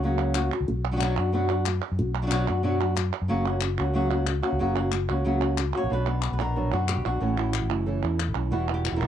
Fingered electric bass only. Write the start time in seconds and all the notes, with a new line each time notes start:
Already playing: C#2
0.61 C#2
0.69 B1
1.18 F#2
1.92 F#2
2.00 B1
2.49 F#2
3.22 F#2
3.31 F#1
3.79 C#2
4.52 C#2
4.61 F#1
5.10 C#2
5.84 A#1
5.92 B1
6.32 B1
6.40 A#1
6.73 F#2
6.97 B1
7.06 A#1
7.21 A1
7.62 A1
7.71 F#1
8.04 E2
8.28 A1
8.35 B1
8.52 E1
8.92 E1
9.00 C#2